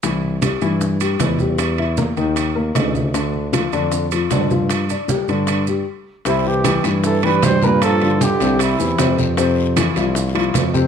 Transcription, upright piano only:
X:1
M:4/4
L:1/8
Q:1/4=154
K:C
V:1 name="Upright piano"
[E,E]2 [G,G] [E,E]2 [G,G] [E,E] [G,G]- | [G,G] [Ee] [_B,_B] [_E,_E]2 [B,B] [_D,E]2 | [D,D]2 [F,F] [D,D]2 [F,F] [D,D] [F,F]- | [F,F] [Dd] [G,G] [D,D]2 [G,G] z2 |
[C,Cc]2 [E,EG] [E,EG]2 [E,EG]2 [_B,,_B,_B]- | [_B,,_B,_B] [D,DF]2 [C,Cc]2 [E,EG] [C,Cc]2 | [C,Cc]2 [E,EF] [F,EF]2 [F,EF]2 [C,Cc] |]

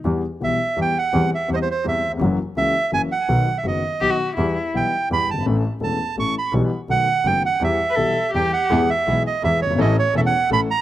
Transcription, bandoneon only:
X:1
M:3/4
L:1/16
Q:1/4=167
K:Em
V:1 name="Bandoneon"
z4 e4 g2 f2- | f2 e2 c/2 ^d/2 c c2 e3 z | z4 e4 ^g2 f2- | f3 e ^d6 z2 |
z4 g4 b2 a2 | z4 a4 ^c'2 b2 | z4 f4 g2 f2 | e8 g2 f2- |
[K:E] f2 e4 d2 e2 c2 | d2 c2 e f3 b2 ^a2 |]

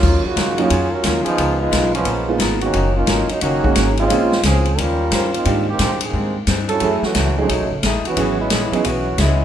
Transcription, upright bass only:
X:1
M:4/4
L:1/8
Q:"Swing" 1/4=177
K:Ebm
V:1 name="Upright bass" clef=bass
E,, z G,,2 F,,2 E,, z | D,,2 C,,2 B,,,2 A,,,2 | G,,,2 A,,, z G,,,2 A,,,2 | B,,,2 D,,2 E,,2 =G,,2 |
A,,2 B,,2 A,,2 =G,,2 | G,, z D,,2 (3=B,,, =A,,, ^F,,, A,,, z | ^G,,,2 B,,, z =B,,,2 ^C,,2 |]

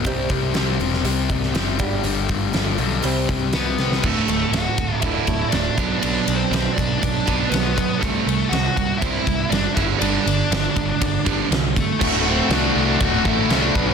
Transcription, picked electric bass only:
X:1
M:4/4
L:1/8
Q:1/4=120
K:Dmix
V:1 name="Picked electric bass" clef=bass
C,, C,, C,, E,,, C,, C,, F,,, G,,, | G,,, G,,, G,,, B,,, C,, C,, C,, C,, | D,,, D,,, D,,, D,,, D,,, D,,, D,,, B,,, | B,,, B,,, B,,, B,,, B,,, B,,, B,,,2 |
C,, C,, C,, C,, C,, C,, F,,, G,,, | G,,, G,,, G,,, G,,, G,,, G,,, C,,2 | D,,,2 C,, C,, D,,, A,,, C,, B,,, |]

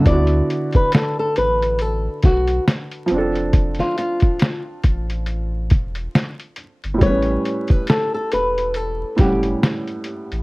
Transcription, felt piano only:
X:1
M:4/4
L:1/8
Q:"Swing 16ths" 1/4=69
K:D
V:1 name="Felt piano"
[D,B,EF]6- [D,B,EF] [=F,=CDA]- | [=F,=CDA]6- [F,CDA] z | [A,,G,B,CB]4- [A,,G,B,CB] [A,,G,Cf]3 |]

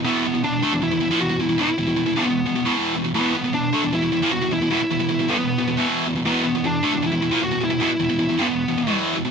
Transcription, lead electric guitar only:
X:1
M:4/4
L:1/8
Q:1/4=155
K:Clyd
V:1 name="Lead electric guitar"
B,2 D2 E2 F E | E3 B,3 z2 | B,2 D2 E2 F E | E3 B,3 z2 |
B,2 D2 E2 F E | E3 B,3 z2 |]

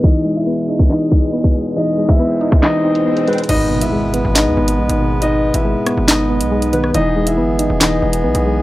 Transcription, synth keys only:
X:1
M:4/4
L:1/8
Q:1/4=139
K:G#m
V:1 name="Synth keys" clef=bass
E, G, B, D E, D B, G, | E, G, B, D E, D B, G, | G,, B,, G, B, D B, G, B,,- | B,,2 G, B, D B, G, D, |
E, G, B, D E, D B, G, |]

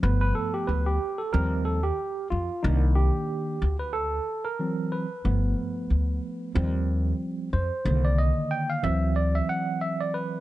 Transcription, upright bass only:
X:1
M:4/4
L:1/16
Q:"Swing 16ths" 1/4=92
K:Dphr
V:1 name="Upright bass" clef=bass
G,,,2 z2 D,,2 z2 E,,4 z2 F,, z | C,,3 z3 D,,4 z6 | G,,,2 z2 D,,2 z2 E,,4 z2 F,, z | C,,3 z3 D,,4 z6 |]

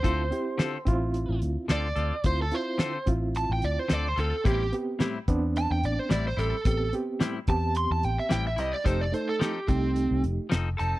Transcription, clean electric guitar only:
X:1
M:4/4
L:1/8
Q:"Swing 16ths" 1/4=109
K:Am
V:1 name="Clean electric guitar"
[D,CFA] z [D,CFA] z3 [D,CFA] [CFA] | z2 [D,CFA] z3 [D,CFA] [CFA] | [A,,G,CE] z [A,,G,CE] z3 [A,,G,CE] [G,CE] | z2 [A,,G,CE] z3 [A,,G,CE] [G,CE] |
[F,C_EA] z [F,CEA] z3 [F,CEA] [CEA] |]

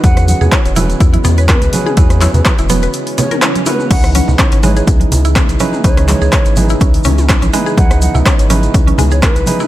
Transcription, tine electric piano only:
X:1
M:4/4
L:1/8
Q:"Swing 16ths" 1/4=124
K:C#m
V:1 name="Tine electric piano"
[CFGB]3 [CFGB]4 [CFGB] | [CFGB]3 [CFGB]4 [CFGB] | [DEGB]3 [DEGB]4 [DEGB] | [DEGB]3 [DEGB]4 [DEGB] |
[DEGB]3 [DEGB]4 [DEGB] |]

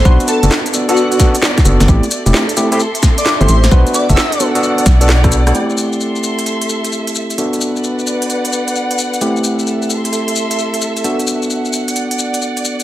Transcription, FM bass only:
X:1
M:4/4
L:1/16
Q:"Swing 16ths" 1/4=131
K:Ador
V:1 name="FM bass" clef=bass
B,,, z2 F,,, z8 z2 F,,, F,,, | A,,, z2 E,,, z8 z G,,, A,,,2 | B,,, z2 F,,, z6 B,,,6 | z16 |
z16 | z16 | z16 |]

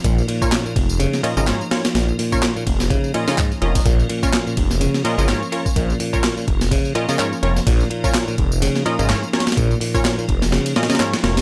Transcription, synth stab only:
X:1
M:4/4
L:1/16
Q:"Swing 16ths" 1/4=126
K:Bbm
V:1 name="Synth stab"
z3 [DFBd]2 z4 z [DFBe] [DFBe] [DFBd] z [DFBd] z | z3 [DFBd]2 z4 z [DFBe] [DFBe] z2 [DFBe]2 | z3 [DFBd]2 z4 z [DFBe] [DFBe] [DFBd] z [DFBd] z | z3 [DFBd]2 z4 z [DFBe] [DFBe] [DFBd] z [DFBd] z |
z3 [DFBd]2 z4 z [DFBe] [DFBe] [DFBd] z [DFBd] z | z3 [DFBd]2 z4 z [DFBe] [DFBe] [DFBd] z [DFBd] z |]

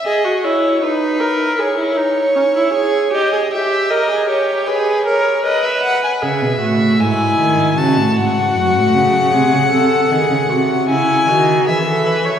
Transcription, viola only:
X:1
M:4/4
L:1/16
Q:1/4=78
K:C#m
V:1 name="Viola"
G F E2 D2 ^A2 G E D2 C E G2 | =G ^G =G2 ^A ^G =G2 ^G2 A2 B4 | G2 F2 E4 F8 | G2 A2 G2 F2 E2 F2 G A B c |]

